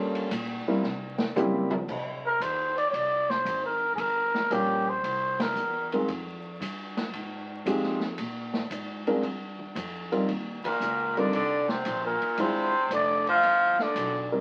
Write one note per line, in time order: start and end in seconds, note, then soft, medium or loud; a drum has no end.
0.00 0.29 G2 medium
0.00 0.28 G3 medium
0.00 0.28 A#3 medium
0.00 0.28 C#4 medium
0.00 0.28 F4 medium
0.00 0.28 A4 medium
0.15 ride soft
0.31 0.64 A#2 medium
0.31 hi-hat pedal medium
0.31 ride medium
0.67 0.82 G3 medium
0.67 0.82 A#3 medium
0.67 0.82 C4 medium
0.67 0.82 E4 medium
0.67 0.82 A#4 medium
0.67 muted upright bass stroke soft
0.83 1.34 C3 medium
0.83 snare soft
1.18 snare medium
1.36 1.87 C#3 medium
1.36 1.68 G3 medium
1.36 1.69 A#3 medium
1.36 1.69 C4 medium
1.36 1.69 E4 medium
1.36 1.69 G4 medium
1.36 hi-hat pedal medium
1.36 high tom medium
1.70 floor tom loud
1.88 2.39 C3 medium
1.88 kick medium
1.88 crash medium
2.26 2.44 A#4 medium
2.40 2.91 D#2 medium
2.40 2.77 C5 medium
2.40 hi-hat pedal soft
2.40 ride medium
2.78 2.88 D5 medium
2.78 ride soft
2.90 3.44 C2 medium
2.90 2.96 C#5 medium
2.90 ride medium
2.94 3.31 D5 loud
3.30 3.64 C5 medium
3.30 snare soft
3.45 3.96 G#1 medium
3.45 hi-hat pedal medium
3.45 ride medium
3.65 3.93 A#4 medium
3.95 4.49 G1 medium
3.95 4.01 G#4 medium
3.95 ride medium
4.00 4.54 A#4 loud
4.34 snare soft
4.50 5.02 A#1 medium
4.50 4.84 G3 medium
4.50 4.84 A#3 medium
4.50 4.84 C#4 medium
4.50 4.84 F4 medium
4.50 4.91 G4 medium
4.50 4.84 A#4 medium
4.50 hi-hat pedal medium
4.50 ride medium
4.89 5.43 C5 medium
5.03 5.54 C2 medium
5.03 ride medium
5.40 5.93 A#4 medium
5.40 snare medium
5.40 ride medium
5.55 6.07 E2 medium
5.55 hi-hat pedal medium
5.92 6.07 G#3 medium
5.92 6.07 C4 medium
5.92 6.07 D#4 medium
5.92 6.07 F4 medium
5.92 6.08 A#4 medium
5.92 ride soft
6.08 6.59 F2 medium
6.08 ride medium
6.60 7.12 G2 medium
6.60 hi-hat pedal soft
6.60 ride medium
6.97 snare medium
6.97 ride soft
7.13 7.64 G#2 medium
7.13 ride medium
7.66 8.17 F2 medium
7.66 7.99 G#3 medium
7.66 7.99 C4 medium
7.66 7.99 D#4 medium
7.66 7.99 F4 medium
7.66 7.99 G4 medium
7.66 hi-hat pedal soft
7.66 ride medium
7.83 snare soft
8.00 snare soft
8.18 8.69 A#2 medium
8.18 ride medium
8.54 snare medium
8.70 9.21 G#2 medium
8.70 hi-hat pedal medium
8.70 ride medium
9.07 9.22 G#3 medium
9.07 9.22 C4 medium
9.07 9.22 D4 medium
9.07 9.22 F4 medium
9.07 9.22 A#4 medium
9.07 ride soft
9.22 9.74 G2 medium
9.22 ride soft
9.59 kick medium
9.75 10.26 F2 medium
9.75 hi-hat pedal medium
9.75 ride medium
10.12 10.27 G3 medium
10.12 10.27 C4 medium
10.12 10.27 D#4 medium
10.12 10.27 F4 medium
10.12 10.27 A#4 medium
10.12 ride soft
10.28 10.62 D#2 medium
10.28 ride medium
10.64 11.20 A#2 medium
10.64 11.20 A#4 medium
10.64 muted upright bass stroke soft
10.64 kick medium
10.64 ride medium
10.80 11.31 C#2 medium
10.80 hi-hat pedal medium
11.17 11.34 D3 medium
11.17 11.32 G3 medium
11.17 11.32 C4 medium
11.17 11.32 D#4 medium
11.17 11.32 F4 medium
11.17 11.32 A#4 medium
11.17 11.34 D5 medium
11.17 ride soft
11.33 11.84 C2 medium
11.33 11.70 D3 medium
11.33 11.72 D5 medium
11.33 ride medium
11.69 12.03 C3 medium
11.69 12.04 C5 medium
11.69 snare medium
11.85 12.19 A#1 medium
11.85 hi-hat pedal medium
11.85 ride medium
12.05 12.42 A#2 medium
12.05 12.43 A#4 medium
12.22 muted upright bass stroke soft
12.22 ride soft
12.37 12.89 G#1 medium
12.37 12.92 C3 medium
12.37 12.71 G#3 medium
12.37 12.71 D4 medium
12.37 12.71 E4 medium
12.37 12.71 F4 medium
12.37 12.71 C5 medium
12.37 12.92 C5 loud
12.37 ride medium
12.90 13.41 F1 medium
12.90 13.25 D3 medium
12.90 13.26 D5 loud
12.90 hi-hat pedal medium
12.90 ride medium
13.27 13.81 F3 loud
13.27 13.84 F5 loud
13.27 ride soft
13.43 13.94 G1 medium
13.43 ride medium
13.79 14.32 D3 medium
13.79 14.33 D5 medium
13.79 snare soft
13.95 14.41 B1 medium
13.95 hi-hat pedal medium
13.95 ride medium
14.32 14.41 G3 medium
14.32 14.41 C4 medium
14.32 14.41 D4 medium
14.32 14.41 D#4 medium
14.32 14.41 A#4 medium